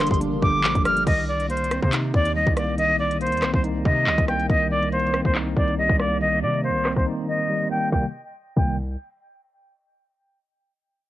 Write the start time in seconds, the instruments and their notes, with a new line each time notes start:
Already playing: tine electric piano D3 F3 G3 D4, ambient pad D4 G4 A#4 F5
0.00 tine electric piano A#3, cross-stick, clap
0.07 closed hi-hat
0.11 808-style bass G1, flute C6, kick, closed hi-hat
0.20 tine electric piano D4, closed hi-hat
0.32 808-style bass F1
0.42 808-style bass G1, tine electric piano D3, flute D6, kick
0.64 808-style bass A#1, tine electric piano F3, clap
0.75 808-style bass G1, kick, closed hi-hat
0.85 tine electric piano G3, flute F6, cross-stick, closed hi-hat
0.97 closed hi-hat
1.06 808-style bass C2, tine electric piano D#3, flute D#5, kick, closed hi-hat, crash
1.28 flute D5
1.40 closed hi-hat
1.49 tine electric piano A#3, flute C5, closed hi-hat
1.57 closed hi-hat
1.64 closed hi-hat
1.71 tine electric piano C4, cross-stick, closed hi-hat
1.82 808-style bass C3, flute C5, kick
1.92 tine electric piano D#4, clap, closed hi-hat
2.14 808-style bass D#2, tine electric piano D#3, flute D5, kick
2.25 closed hi-hat
2.35 tine electric piano G3, flute D#5
2.47 808-style bass C2, kick
2.56 tine electric piano A#3, flute D5, cross-stick, closed hi-hat
2.78 tine electric piano D#3, flute D#5, closed hi-hat
3.00 flute D5
3.11 closed hi-hat
3.21 tine electric piano A#3, flute C5, closed hi-hat
3.27 closed hi-hat
3.32 808-style bass D#2, closed hi-hat
3.37 closed hi-hat
3.42 808-style bass C2, tine electric piano C4, cross-stick, clap, closed hi-hat
3.54 808-style bass C2, flute C5, kick
3.64 tine electric piano D#4, closed hi-hat
3.85 808-style bass C3, tine electric piano D#3, flute D#5, kick
4.07 808-style bass D2, tine electric piano G3, clap
4.18 808-style bass C2, kick, closed hi-hat
4.28 tine electric piano A#3, flute G5, cross-stick, closed hi-hat
4.39 closed hi-hat
4.49 808-style bass C2, tine electric piano D#3, flute D#5, kick, closed hi-hat
4.71 flute D5
4.82 closed hi-hat
4.92 tine electric piano A#3, flute C5, closed hi-hat
5.00 closed hi-hat
5.07 closed hi-hat
5.13 tine electric piano C4, cross-stick, closed hi-hat
5.25 808-style bass C2, flute C5, kick
5.35 tine electric piano D#4, clap, closed hi-hat
5.57 808-style bass C2, tine electric piano D#3, flute D5, kick
5.68 closed hi-hat
5.78 tine electric piano G3, flute D#5
5.89 808-style bass C2, kick
5.99 tine electric piano A#3, flute D5, cross-stick, closed hi-hat
6.20 tine electric piano D#3, flute D#5, closed hi-hat
6.42 808-style bass C3, flute D5
6.54 closed hi-hat
6.64 tine electric piano A#3, flute C5, closed hi-hat
6.69 808-style bass C2, closed hi-hat
6.78 closed hi-hat
6.85 tine electric piano C4, cross-stick, clap, closed hi-hat
6.92 closed hi-hat
6.97 808-style bass C2, flute C5, kick, closed hi-hat
7.06 tine electric piano D#4
7.28 tine electric piano D#3, flute D#5
7.49 tine electric piano G3
7.71 tine electric piano A#3, flute G5
7.92 808-style bass C2, tine electric piano C3 D#3 G3 A#3, flute G5, kick, snare
8.57 808-style bass C2, tine electric piano C3 D#3 G3 A#3, flute G5, kick, crash